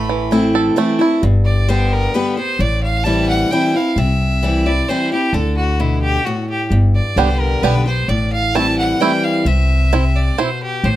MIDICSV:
0, 0, Header, 1, 5, 480
1, 0, Start_track
1, 0, Key_signature, 0, "minor"
1, 0, Tempo, 457666
1, 1287, Time_signature, 3, 2, 24, 8
1, 11496, End_track
2, 0, Start_track
2, 0, Title_t, "Fiddle"
2, 0, Program_c, 0, 110
2, 0, Note_on_c, 0, 83, 110
2, 324, Note_off_c, 0, 83, 0
2, 1525, Note_on_c, 0, 74, 82
2, 1773, Note_on_c, 0, 72, 80
2, 1789, Note_off_c, 0, 74, 0
2, 2023, Note_on_c, 0, 70, 92
2, 2038, Note_off_c, 0, 72, 0
2, 2246, Note_on_c, 0, 71, 78
2, 2262, Note_off_c, 0, 70, 0
2, 2484, Note_off_c, 0, 71, 0
2, 2490, Note_on_c, 0, 72, 92
2, 2732, Note_on_c, 0, 74, 88
2, 2748, Note_off_c, 0, 72, 0
2, 2960, Note_off_c, 0, 74, 0
2, 2966, Note_on_c, 0, 77, 91
2, 3187, Note_on_c, 0, 81, 103
2, 3203, Note_off_c, 0, 77, 0
2, 3439, Note_off_c, 0, 81, 0
2, 3448, Note_on_c, 0, 78, 106
2, 3685, Note_on_c, 0, 79, 93
2, 3701, Note_off_c, 0, 78, 0
2, 3940, Note_on_c, 0, 77, 85
2, 3956, Note_off_c, 0, 79, 0
2, 4178, Note_on_c, 0, 76, 87
2, 4193, Note_off_c, 0, 77, 0
2, 4890, Note_on_c, 0, 74, 91
2, 4906, Note_off_c, 0, 76, 0
2, 5127, Note_on_c, 0, 72, 91
2, 5143, Note_off_c, 0, 74, 0
2, 5369, Note_off_c, 0, 72, 0
2, 5378, Note_on_c, 0, 67, 81
2, 5601, Note_on_c, 0, 69, 90
2, 5617, Note_off_c, 0, 67, 0
2, 5834, Note_off_c, 0, 69, 0
2, 5840, Note_on_c, 0, 66, 88
2, 6082, Note_on_c, 0, 64, 78
2, 6098, Note_off_c, 0, 66, 0
2, 6307, Note_off_c, 0, 64, 0
2, 6313, Note_on_c, 0, 67, 100
2, 6556, Note_on_c, 0, 66, 81
2, 6572, Note_off_c, 0, 67, 0
2, 6804, Note_off_c, 0, 66, 0
2, 6812, Note_on_c, 0, 67, 78
2, 7029, Note_off_c, 0, 67, 0
2, 7290, Note_on_c, 0, 74, 81
2, 7522, Note_on_c, 0, 72, 87
2, 7538, Note_off_c, 0, 74, 0
2, 7768, Note_on_c, 0, 70, 95
2, 7784, Note_off_c, 0, 72, 0
2, 7998, Note_on_c, 0, 71, 87
2, 8013, Note_off_c, 0, 70, 0
2, 8230, Note_off_c, 0, 71, 0
2, 8236, Note_on_c, 0, 72, 83
2, 8480, Note_on_c, 0, 74, 88
2, 8496, Note_off_c, 0, 72, 0
2, 8726, Note_off_c, 0, 74, 0
2, 8731, Note_on_c, 0, 77, 97
2, 8970, Note_on_c, 0, 81, 106
2, 8986, Note_off_c, 0, 77, 0
2, 9206, Note_off_c, 0, 81, 0
2, 9212, Note_on_c, 0, 78, 104
2, 9449, Note_on_c, 0, 79, 96
2, 9464, Note_off_c, 0, 78, 0
2, 9689, Note_on_c, 0, 77, 90
2, 9704, Note_off_c, 0, 79, 0
2, 9938, Note_on_c, 0, 76, 87
2, 9953, Note_off_c, 0, 77, 0
2, 10655, Note_on_c, 0, 74, 91
2, 10671, Note_off_c, 0, 76, 0
2, 10886, Note_on_c, 0, 72, 83
2, 10902, Note_off_c, 0, 74, 0
2, 11131, Note_off_c, 0, 72, 0
2, 11150, Note_on_c, 0, 67, 89
2, 11381, Note_on_c, 0, 72, 83
2, 11397, Note_off_c, 0, 67, 0
2, 11496, Note_off_c, 0, 72, 0
2, 11496, End_track
3, 0, Start_track
3, 0, Title_t, "Five-string banjo"
3, 0, Program_c, 1, 105
3, 0, Note_on_c, 1, 57, 84
3, 99, Note_on_c, 1, 52, 61
3, 338, Note_on_c, 1, 64, 62
3, 526, Note_off_c, 1, 57, 0
3, 576, Note_on_c, 1, 69, 67
3, 763, Note_off_c, 1, 52, 0
3, 818, Note_on_c, 1, 57, 72
3, 1007, Note_off_c, 1, 64, 0
3, 1062, Note_on_c, 1, 64, 60
3, 1241, Note_off_c, 1, 69, 0
3, 1292, Note_off_c, 1, 57, 0
3, 1292, Note_off_c, 1, 64, 0
3, 7527, Note_on_c, 1, 59, 66
3, 7531, Note_on_c, 1, 62, 64
3, 7539, Note_on_c, 1, 67, 65
3, 7633, Note_off_c, 1, 59, 0
3, 7635, Note_off_c, 1, 62, 0
3, 7637, Note_off_c, 1, 67, 0
3, 8009, Note_on_c, 1, 59, 66
3, 8015, Note_on_c, 1, 62, 61
3, 8015, Note_on_c, 1, 67, 66
3, 8115, Note_off_c, 1, 59, 0
3, 8115, Note_off_c, 1, 62, 0
3, 8117, Note_off_c, 1, 67, 0
3, 8970, Note_on_c, 1, 57, 69
3, 8974, Note_on_c, 1, 64, 65
3, 8977, Note_off_c, 1, 64, 0
3, 8977, Note_on_c, 1, 64, 66
3, 9075, Note_off_c, 1, 57, 0
3, 9078, Note_off_c, 1, 64, 0
3, 9455, Note_on_c, 1, 57, 71
3, 9461, Note_on_c, 1, 64, 68
3, 9558, Note_off_c, 1, 57, 0
3, 9561, Note_off_c, 1, 64, 0
3, 10412, Note_on_c, 1, 60, 64
3, 10417, Note_on_c, 1, 64, 65
3, 10424, Note_off_c, 1, 64, 0
3, 10424, Note_on_c, 1, 64, 66
3, 10518, Note_off_c, 1, 60, 0
3, 10520, Note_off_c, 1, 64, 0
3, 10891, Note_on_c, 1, 60, 71
3, 10895, Note_on_c, 1, 64, 69
3, 10898, Note_off_c, 1, 64, 0
3, 10898, Note_on_c, 1, 64, 71
3, 10997, Note_off_c, 1, 60, 0
3, 11000, Note_off_c, 1, 64, 0
3, 11496, End_track
4, 0, Start_track
4, 0, Title_t, "Steel-string acoustic guitar"
4, 0, Program_c, 2, 25
4, 0, Note_on_c, 2, 45, 94
4, 326, Note_on_c, 2, 52, 83
4, 335, Note_on_c, 2, 57, 92
4, 341, Note_on_c, 2, 60, 93
4, 345, Note_on_c, 2, 64, 93
4, 762, Note_off_c, 2, 45, 0
4, 782, Note_off_c, 2, 52, 0
4, 787, Note_off_c, 2, 57, 0
4, 790, Note_off_c, 2, 60, 0
4, 792, Note_off_c, 2, 64, 0
4, 798, Note_on_c, 2, 52, 87
4, 802, Note_on_c, 2, 57, 87
4, 809, Note_on_c, 2, 60, 105
4, 817, Note_on_c, 2, 64, 91
4, 1024, Note_off_c, 2, 64, 0
4, 1036, Note_on_c, 2, 64, 69
4, 1037, Note_off_c, 2, 52, 0
4, 1039, Note_off_c, 2, 57, 0
4, 1042, Note_off_c, 2, 60, 0
4, 1059, Note_on_c, 2, 60, 52
4, 1270, Note_off_c, 2, 64, 0
4, 1281, Note_off_c, 2, 60, 0
4, 1290, Note_on_c, 2, 43, 91
4, 1768, Note_on_c, 2, 50, 92
4, 1771, Note_on_c, 2, 55, 90
4, 1779, Note_on_c, 2, 59, 89
4, 1783, Note_on_c, 2, 67, 96
4, 2199, Note_off_c, 2, 43, 0
4, 2222, Note_off_c, 2, 50, 0
4, 2223, Note_off_c, 2, 55, 0
4, 2228, Note_off_c, 2, 59, 0
4, 2230, Note_off_c, 2, 67, 0
4, 2246, Note_on_c, 2, 50, 91
4, 2252, Note_on_c, 2, 55, 92
4, 2256, Note_on_c, 2, 59, 96
4, 2260, Note_on_c, 2, 67, 94
4, 2475, Note_off_c, 2, 67, 0
4, 2479, Note_off_c, 2, 50, 0
4, 2482, Note_off_c, 2, 55, 0
4, 2484, Note_off_c, 2, 59, 0
4, 2488, Note_on_c, 2, 67, 58
4, 2504, Note_on_c, 2, 59, 47
4, 2714, Note_off_c, 2, 67, 0
4, 2722, Note_off_c, 2, 59, 0
4, 2731, Note_on_c, 2, 45, 93
4, 3197, Note_on_c, 2, 52, 83
4, 3207, Note_on_c, 2, 55, 89
4, 3212, Note_on_c, 2, 60, 90
4, 3216, Note_on_c, 2, 64, 94
4, 3639, Note_off_c, 2, 45, 0
4, 3656, Note_off_c, 2, 52, 0
4, 3661, Note_off_c, 2, 55, 0
4, 3664, Note_off_c, 2, 60, 0
4, 3666, Note_off_c, 2, 64, 0
4, 3683, Note_on_c, 2, 52, 85
4, 3695, Note_on_c, 2, 55, 92
4, 3698, Note_on_c, 2, 60, 92
4, 3701, Note_on_c, 2, 64, 95
4, 3911, Note_off_c, 2, 64, 0
4, 3917, Note_off_c, 2, 52, 0
4, 3923, Note_off_c, 2, 55, 0
4, 3924, Note_on_c, 2, 64, 59
4, 3925, Note_off_c, 2, 60, 0
4, 3944, Note_on_c, 2, 60, 57
4, 4152, Note_off_c, 2, 64, 0
4, 4162, Note_off_c, 2, 60, 0
4, 4171, Note_on_c, 2, 48, 88
4, 4641, Note_on_c, 2, 52, 88
4, 4647, Note_on_c, 2, 55, 84
4, 4656, Note_on_c, 2, 60, 89
4, 4662, Note_on_c, 2, 64, 91
4, 4875, Note_off_c, 2, 64, 0
4, 4876, Note_off_c, 2, 52, 0
4, 4879, Note_off_c, 2, 55, 0
4, 4884, Note_off_c, 2, 60, 0
4, 4888, Note_on_c, 2, 64, 66
4, 4901, Note_on_c, 2, 60, 49
4, 5079, Note_off_c, 2, 48, 0
4, 5114, Note_off_c, 2, 64, 0
4, 5120, Note_off_c, 2, 60, 0
4, 5128, Note_on_c, 2, 52, 86
4, 5139, Note_on_c, 2, 55, 82
4, 5142, Note_on_c, 2, 60, 92
4, 5148, Note_on_c, 2, 64, 102
4, 5356, Note_off_c, 2, 64, 0
4, 5360, Note_off_c, 2, 52, 0
4, 5365, Note_off_c, 2, 55, 0
4, 5366, Note_off_c, 2, 60, 0
4, 5369, Note_on_c, 2, 64, 63
4, 5388, Note_on_c, 2, 60, 54
4, 5594, Note_off_c, 2, 64, 0
4, 5602, Note_on_c, 2, 50, 94
4, 5604, Note_off_c, 2, 60, 0
4, 6079, Note_on_c, 2, 47, 81
4, 6515, Note_off_c, 2, 50, 0
4, 6537, Note_off_c, 2, 47, 0
4, 6570, Note_on_c, 2, 45, 83
4, 7023, Note_off_c, 2, 45, 0
4, 7043, Note_on_c, 2, 43, 89
4, 7519, Note_on_c, 2, 50, 86
4, 7526, Note_on_c, 2, 55, 93
4, 7534, Note_on_c, 2, 59, 87
4, 7537, Note_on_c, 2, 67, 90
4, 7956, Note_off_c, 2, 43, 0
4, 7978, Note_off_c, 2, 50, 0
4, 7981, Note_off_c, 2, 55, 0
4, 7985, Note_off_c, 2, 59, 0
4, 7987, Note_off_c, 2, 67, 0
4, 8003, Note_on_c, 2, 50, 90
4, 8004, Note_on_c, 2, 55, 100
4, 8016, Note_on_c, 2, 59, 99
4, 8019, Note_on_c, 2, 67, 98
4, 8228, Note_off_c, 2, 67, 0
4, 8238, Note_off_c, 2, 50, 0
4, 8238, Note_off_c, 2, 55, 0
4, 8240, Note_on_c, 2, 67, 56
4, 8244, Note_off_c, 2, 59, 0
4, 8258, Note_on_c, 2, 59, 48
4, 8471, Note_off_c, 2, 67, 0
4, 8480, Note_off_c, 2, 59, 0
4, 8485, Note_on_c, 2, 45, 93
4, 8965, Note_on_c, 2, 52, 85
4, 8971, Note_on_c, 2, 55, 78
4, 8977, Note_on_c, 2, 60, 83
4, 8981, Note_on_c, 2, 64, 87
4, 9398, Note_off_c, 2, 45, 0
4, 9422, Note_off_c, 2, 52, 0
4, 9425, Note_off_c, 2, 55, 0
4, 9428, Note_off_c, 2, 60, 0
4, 9430, Note_off_c, 2, 64, 0
4, 9439, Note_on_c, 2, 52, 79
4, 9445, Note_on_c, 2, 55, 89
4, 9455, Note_on_c, 2, 60, 83
4, 9459, Note_on_c, 2, 64, 93
4, 9899, Note_off_c, 2, 52, 0
4, 9902, Note_off_c, 2, 55, 0
4, 9907, Note_off_c, 2, 60, 0
4, 9909, Note_off_c, 2, 64, 0
4, 9924, Note_on_c, 2, 48, 93
4, 10398, Note_off_c, 2, 48, 0
4, 10411, Note_on_c, 2, 48, 87
4, 10866, Note_off_c, 2, 48, 0
4, 10890, Note_on_c, 2, 47, 88
4, 11346, Note_off_c, 2, 47, 0
4, 11370, Note_on_c, 2, 45, 90
4, 11496, Note_off_c, 2, 45, 0
4, 11496, End_track
5, 0, Start_track
5, 0, Title_t, "Upright bass"
5, 0, Program_c, 3, 32
5, 0, Note_on_c, 3, 33, 96
5, 716, Note_off_c, 3, 33, 0
5, 1288, Note_on_c, 3, 31, 92
5, 2159, Note_off_c, 3, 31, 0
5, 2718, Note_on_c, 3, 33, 93
5, 3591, Note_off_c, 3, 33, 0
5, 4154, Note_on_c, 3, 36, 92
5, 5029, Note_off_c, 3, 36, 0
5, 5588, Note_on_c, 3, 38, 95
5, 6465, Note_off_c, 3, 38, 0
5, 7032, Note_on_c, 3, 31, 90
5, 7326, Note_off_c, 3, 31, 0
5, 7512, Note_on_c, 3, 36, 88
5, 7925, Note_off_c, 3, 36, 0
5, 7996, Note_on_c, 3, 35, 91
5, 8408, Note_off_c, 3, 35, 0
5, 8476, Note_on_c, 3, 33, 95
5, 9352, Note_off_c, 3, 33, 0
5, 9915, Note_on_c, 3, 36, 91
5, 10792, Note_off_c, 3, 36, 0
5, 11365, Note_on_c, 3, 33, 96
5, 11496, Note_off_c, 3, 33, 0
5, 11496, End_track
0, 0, End_of_file